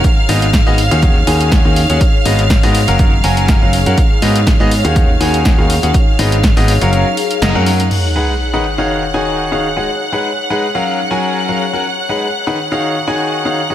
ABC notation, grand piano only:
X:1
M:4/4
L:1/16
Q:"Swing 16ths" 1/4=122
K:D#m
V:1 name="Grand piano"
z2 [G,,B,FGd] z2 [B,FGd] z [D,CFGe]2 z [D,CFGg]3 [D,CFGe] z [CFGf] | z2 [G,,B,FGd] z2 [G,,B,FGd] z [F,CFAe]2 z [F,CFAg]3 [F,CFAe] z [CFAf] | z2 [G,,B,FGd] z2 [B,FGd] z [D,CFGe]2 z [D,CFGg]3 [D,CFGe] z [CFGf] | z2 [G,,B,FGd] z2 [G,,B,FGd] z [F,CFAe]2 z3 [F,CFAd] [F,CFAf]2 z |
z2 [G,DGBf] z2 [D,DGBf] z [D,DFGce]2 z [D,DFGcg]3 [D,DFGce] z [G,DFGcf] | z2 [G,DGBf] z2 [G,DGBf] z [F,CFAe]2 z [F,CFAg]3 [F,CFAe] z [CFAf] | z2 [G,DGBf] z2 [D,DGBf] z [D,DFGce]2 z [D,DFGcg]3 [D,DFGce] z [G,DFGcf] |]